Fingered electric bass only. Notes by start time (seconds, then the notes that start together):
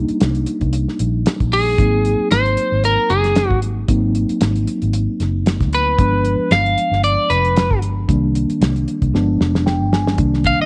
0.10 muted fingered electric bass stroke
0.22 C2
0.61 C2
1.00 A#1
1.40 A#1
1.79 G#1
2.31 G#1
2.72 G#1
3.10 F#1
3.51 G#1
3.88 G#1
4.30 muted fingered electric bass stroke
4.41 G#1
4.82 G#1
5.20 F#1
5.60 D2
5.99 G1
6.39 muted fingered electric bass stroke
6.51 G1
6.91 G1
7.30 F1
7.70 G1
8.09 C2
8.49 muted fingered electric bass stroke
8.61 C2
9.02 C2
9.14 G1
9.40 F1
9.81 G1
10.18 C2
10.60 muted fingered electric bass stroke